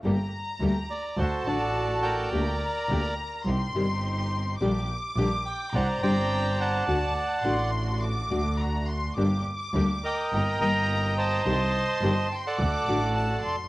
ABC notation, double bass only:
X:1
M:4/4
L:1/8
Q:1/4=105
K:Gm
V:1 name="Double bass" clef=bass
G,,, z D,, z D,, A,,,3 | D,, z D,, z C,, G,,,3 | B,,, z B,,, z C,, G,,,3 | D,, z A,,,3 D,,3 |
G,,, z D,, z G,,, G,,,3 | C,, z G,,, z D,, A,,,2 F,,, |]